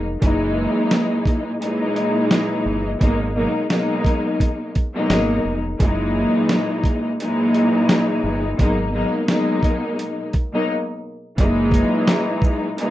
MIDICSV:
0, 0, Header, 1, 4, 480
1, 0, Start_track
1, 0, Tempo, 697674
1, 150, Time_signature, 4, 2, 24, 8
1, 8877, End_track
2, 0, Start_track
2, 0, Title_t, "String section"
2, 0, Program_c, 0, 48
2, 145, Note_on_c, 0, 46, 101
2, 150, Note_on_c, 0, 52, 91
2, 152, Note_on_c, 0, 54, 87
2, 157, Note_on_c, 0, 56, 94
2, 161, Note_on_c, 0, 63, 107
2, 1037, Note_off_c, 0, 46, 0
2, 1039, Note_off_c, 0, 52, 0
2, 1040, Note_off_c, 0, 54, 0
2, 1043, Note_off_c, 0, 56, 0
2, 1045, Note_off_c, 0, 63, 0
2, 1108, Note_on_c, 0, 46, 102
2, 1112, Note_on_c, 0, 52, 94
2, 1116, Note_on_c, 0, 54, 91
2, 1118, Note_on_c, 0, 56, 98
2, 1123, Note_on_c, 0, 63, 107
2, 1998, Note_off_c, 0, 46, 0
2, 2000, Note_off_c, 0, 52, 0
2, 2002, Note_off_c, 0, 54, 0
2, 2004, Note_off_c, 0, 56, 0
2, 2006, Note_off_c, 0, 63, 0
2, 2056, Note_on_c, 0, 47, 94
2, 2060, Note_on_c, 0, 54, 88
2, 2063, Note_on_c, 0, 56, 87
2, 2068, Note_on_c, 0, 58, 96
2, 2072, Note_on_c, 0, 63, 98
2, 2285, Note_off_c, 0, 47, 0
2, 2287, Note_off_c, 0, 54, 0
2, 2289, Note_off_c, 0, 56, 0
2, 2291, Note_off_c, 0, 58, 0
2, 2293, Note_off_c, 0, 63, 0
2, 2295, Note_on_c, 0, 47, 97
2, 2299, Note_on_c, 0, 54, 89
2, 2303, Note_on_c, 0, 56, 82
2, 2306, Note_on_c, 0, 58, 81
2, 2310, Note_on_c, 0, 63, 99
2, 2525, Note_off_c, 0, 47, 0
2, 2527, Note_off_c, 0, 54, 0
2, 2529, Note_off_c, 0, 56, 0
2, 2530, Note_off_c, 0, 58, 0
2, 2532, Note_off_c, 0, 63, 0
2, 2536, Note_on_c, 0, 47, 92
2, 2539, Note_on_c, 0, 54, 90
2, 2543, Note_on_c, 0, 56, 94
2, 2547, Note_on_c, 0, 58, 82
2, 2551, Note_on_c, 0, 63, 108
2, 3210, Note_off_c, 0, 47, 0
2, 3212, Note_off_c, 0, 54, 0
2, 3214, Note_off_c, 0, 56, 0
2, 3215, Note_off_c, 0, 58, 0
2, 3217, Note_off_c, 0, 63, 0
2, 3402, Note_on_c, 0, 47, 100
2, 3405, Note_on_c, 0, 54, 95
2, 3410, Note_on_c, 0, 56, 89
2, 3413, Note_on_c, 0, 58, 91
2, 3417, Note_on_c, 0, 63, 112
2, 3839, Note_off_c, 0, 47, 0
2, 3841, Note_off_c, 0, 54, 0
2, 3843, Note_off_c, 0, 56, 0
2, 3845, Note_off_c, 0, 58, 0
2, 3847, Note_off_c, 0, 63, 0
2, 3986, Note_on_c, 0, 46, 102
2, 3989, Note_on_c, 0, 52, 90
2, 3994, Note_on_c, 0, 54, 86
2, 3997, Note_on_c, 0, 56, 93
2, 4001, Note_on_c, 0, 63, 105
2, 4877, Note_off_c, 0, 46, 0
2, 4879, Note_off_c, 0, 52, 0
2, 4881, Note_off_c, 0, 54, 0
2, 4883, Note_off_c, 0, 56, 0
2, 4885, Note_off_c, 0, 63, 0
2, 4948, Note_on_c, 0, 46, 106
2, 4951, Note_on_c, 0, 52, 95
2, 4955, Note_on_c, 0, 54, 98
2, 4959, Note_on_c, 0, 56, 100
2, 4963, Note_on_c, 0, 63, 112
2, 5838, Note_off_c, 0, 46, 0
2, 5840, Note_off_c, 0, 52, 0
2, 5842, Note_off_c, 0, 54, 0
2, 5844, Note_off_c, 0, 56, 0
2, 5846, Note_off_c, 0, 63, 0
2, 5896, Note_on_c, 0, 47, 91
2, 5899, Note_on_c, 0, 54, 83
2, 5903, Note_on_c, 0, 56, 84
2, 5907, Note_on_c, 0, 58, 94
2, 5911, Note_on_c, 0, 63, 102
2, 6125, Note_off_c, 0, 47, 0
2, 6127, Note_off_c, 0, 54, 0
2, 6129, Note_off_c, 0, 56, 0
2, 6131, Note_off_c, 0, 58, 0
2, 6133, Note_off_c, 0, 63, 0
2, 6136, Note_on_c, 0, 47, 94
2, 6139, Note_on_c, 0, 54, 86
2, 6143, Note_on_c, 0, 56, 83
2, 6147, Note_on_c, 0, 58, 82
2, 6150, Note_on_c, 0, 63, 98
2, 6365, Note_off_c, 0, 47, 0
2, 6367, Note_off_c, 0, 54, 0
2, 6369, Note_off_c, 0, 56, 0
2, 6371, Note_off_c, 0, 58, 0
2, 6372, Note_off_c, 0, 63, 0
2, 6377, Note_on_c, 0, 47, 96
2, 6380, Note_on_c, 0, 54, 93
2, 6385, Note_on_c, 0, 56, 88
2, 6388, Note_on_c, 0, 58, 84
2, 6392, Note_on_c, 0, 63, 108
2, 7051, Note_off_c, 0, 47, 0
2, 7052, Note_off_c, 0, 54, 0
2, 7054, Note_off_c, 0, 56, 0
2, 7056, Note_off_c, 0, 58, 0
2, 7058, Note_off_c, 0, 63, 0
2, 7241, Note_on_c, 0, 47, 93
2, 7244, Note_on_c, 0, 54, 88
2, 7247, Note_on_c, 0, 56, 84
2, 7252, Note_on_c, 0, 58, 89
2, 7255, Note_on_c, 0, 63, 107
2, 7350, Note_off_c, 0, 47, 0
2, 7352, Note_off_c, 0, 54, 0
2, 7354, Note_off_c, 0, 56, 0
2, 7356, Note_off_c, 0, 58, 0
2, 7358, Note_off_c, 0, 63, 0
2, 7825, Note_on_c, 0, 46, 105
2, 7829, Note_on_c, 0, 52, 93
2, 7832, Note_on_c, 0, 54, 88
2, 7835, Note_on_c, 0, 56, 100
2, 7839, Note_on_c, 0, 63, 108
2, 8717, Note_off_c, 0, 46, 0
2, 8719, Note_off_c, 0, 52, 0
2, 8720, Note_off_c, 0, 54, 0
2, 8722, Note_off_c, 0, 56, 0
2, 8724, Note_off_c, 0, 63, 0
2, 8788, Note_on_c, 0, 46, 102
2, 8792, Note_on_c, 0, 52, 94
2, 8796, Note_on_c, 0, 54, 98
2, 8800, Note_on_c, 0, 56, 100
2, 8804, Note_on_c, 0, 63, 112
2, 8877, Note_off_c, 0, 46, 0
2, 8877, Note_off_c, 0, 52, 0
2, 8877, Note_off_c, 0, 54, 0
2, 8877, Note_off_c, 0, 56, 0
2, 8877, Note_off_c, 0, 63, 0
2, 8877, End_track
3, 0, Start_track
3, 0, Title_t, "Fingered electric bass"
3, 0, Program_c, 1, 33
3, 0, Note_on_c, 1, 29, 87
3, 106, Note_off_c, 1, 29, 0
3, 151, Note_on_c, 1, 30, 104
3, 452, Note_off_c, 1, 30, 0
3, 1829, Note_on_c, 1, 31, 84
3, 2025, Note_off_c, 1, 31, 0
3, 2070, Note_on_c, 1, 32, 98
3, 2372, Note_off_c, 1, 32, 0
3, 3510, Note_on_c, 1, 32, 97
3, 3706, Note_off_c, 1, 32, 0
3, 3749, Note_on_c, 1, 29, 87
3, 3945, Note_off_c, 1, 29, 0
3, 3990, Note_on_c, 1, 30, 107
3, 4292, Note_off_c, 1, 30, 0
3, 5669, Note_on_c, 1, 31, 89
3, 5865, Note_off_c, 1, 31, 0
3, 5910, Note_on_c, 1, 32, 99
3, 6212, Note_off_c, 1, 32, 0
3, 7830, Note_on_c, 1, 30, 107
3, 8132, Note_off_c, 1, 30, 0
3, 8877, End_track
4, 0, Start_track
4, 0, Title_t, "Drums"
4, 150, Note_on_c, 9, 36, 106
4, 152, Note_on_c, 9, 42, 92
4, 219, Note_off_c, 9, 36, 0
4, 221, Note_off_c, 9, 42, 0
4, 627, Note_on_c, 9, 38, 112
4, 627, Note_on_c, 9, 42, 76
4, 695, Note_off_c, 9, 42, 0
4, 696, Note_off_c, 9, 38, 0
4, 863, Note_on_c, 9, 36, 94
4, 874, Note_on_c, 9, 42, 55
4, 932, Note_off_c, 9, 36, 0
4, 943, Note_off_c, 9, 42, 0
4, 1114, Note_on_c, 9, 42, 92
4, 1183, Note_off_c, 9, 42, 0
4, 1350, Note_on_c, 9, 42, 54
4, 1419, Note_off_c, 9, 42, 0
4, 1588, Note_on_c, 9, 38, 116
4, 1589, Note_on_c, 9, 42, 78
4, 1657, Note_off_c, 9, 38, 0
4, 1657, Note_off_c, 9, 42, 0
4, 2070, Note_on_c, 9, 36, 110
4, 2071, Note_on_c, 9, 42, 92
4, 2139, Note_off_c, 9, 36, 0
4, 2140, Note_off_c, 9, 42, 0
4, 2546, Note_on_c, 9, 42, 74
4, 2547, Note_on_c, 9, 38, 112
4, 2615, Note_off_c, 9, 42, 0
4, 2616, Note_off_c, 9, 38, 0
4, 2783, Note_on_c, 9, 36, 94
4, 2794, Note_on_c, 9, 42, 56
4, 2852, Note_off_c, 9, 36, 0
4, 2863, Note_off_c, 9, 42, 0
4, 3028, Note_on_c, 9, 36, 84
4, 3034, Note_on_c, 9, 42, 90
4, 3097, Note_off_c, 9, 36, 0
4, 3102, Note_off_c, 9, 42, 0
4, 3270, Note_on_c, 9, 42, 57
4, 3273, Note_on_c, 9, 36, 88
4, 3339, Note_off_c, 9, 42, 0
4, 3342, Note_off_c, 9, 36, 0
4, 3509, Note_on_c, 9, 38, 118
4, 3509, Note_on_c, 9, 42, 77
4, 3577, Note_off_c, 9, 38, 0
4, 3578, Note_off_c, 9, 42, 0
4, 3990, Note_on_c, 9, 36, 106
4, 3991, Note_on_c, 9, 42, 93
4, 4059, Note_off_c, 9, 36, 0
4, 4060, Note_off_c, 9, 42, 0
4, 4467, Note_on_c, 9, 38, 115
4, 4467, Note_on_c, 9, 42, 75
4, 4535, Note_off_c, 9, 42, 0
4, 4536, Note_off_c, 9, 38, 0
4, 4703, Note_on_c, 9, 36, 95
4, 4714, Note_on_c, 9, 42, 55
4, 4772, Note_off_c, 9, 36, 0
4, 4782, Note_off_c, 9, 42, 0
4, 4954, Note_on_c, 9, 42, 90
4, 5023, Note_off_c, 9, 42, 0
4, 5190, Note_on_c, 9, 42, 53
4, 5259, Note_off_c, 9, 42, 0
4, 5429, Note_on_c, 9, 38, 118
4, 5429, Note_on_c, 9, 42, 79
4, 5498, Note_off_c, 9, 38, 0
4, 5498, Note_off_c, 9, 42, 0
4, 5910, Note_on_c, 9, 36, 104
4, 5911, Note_on_c, 9, 42, 93
4, 5979, Note_off_c, 9, 36, 0
4, 5980, Note_off_c, 9, 42, 0
4, 6387, Note_on_c, 9, 38, 115
4, 6387, Note_on_c, 9, 42, 78
4, 6456, Note_off_c, 9, 38, 0
4, 6456, Note_off_c, 9, 42, 0
4, 6623, Note_on_c, 9, 36, 94
4, 6634, Note_on_c, 9, 42, 56
4, 6692, Note_off_c, 9, 36, 0
4, 6703, Note_off_c, 9, 42, 0
4, 6874, Note_on_c, 9, 42, 90
4, 6943, Note_off_c, 9, 42, 0
4, 7109, Note_on_c, 9, 42, 53
4, 7113, Note_on_c, 9, 36, 90
4, 7178, Note_off_c, 9, 42, 0
4, 7182, Note_off_c, 9, 36, 0
4, 7830, Note_on_c, 9, 36, 112
4, 7831, Note_on_c, 9, 42, 92
4, 7899, Note_off_c, 9, 36, 0
4, 7900, Note_off_c, 9, 42, 0
4, 8060, Note_on_c, 9, 36, 95
4, 8075, Note_on_c, 9, 42, 55
4, 8075, Note_on_c, 9, 82, 55
4, 8128, Note_off_c, 9, 36, 0
4, 8144, Note_off_c, 9, 42, 0
4, 8144, Note_off_c, 9, 82, 0
4, 8307, Note_on_c, 9, 42, 78
4, 8308, Note_on_c, 9, 38, 115
4, 8376, Note_off_c, 9, 38, 0
4, 8376, Note_off_c, 9, 42, 0
4, 8544, Note_on_c, 9, 36, 100
4, 8555, Note_on_c, 9, 82, 57
4, 8612, Note_off_c, 9, 36, 0
4, 8623, Note_off_c, 9, 82, 0
4, 8794, Note_on_c, 9, 42, 92
4, 8863, Note_off_c, 9, 42, 0
4, 8877, End_track
0, 0, End_of_file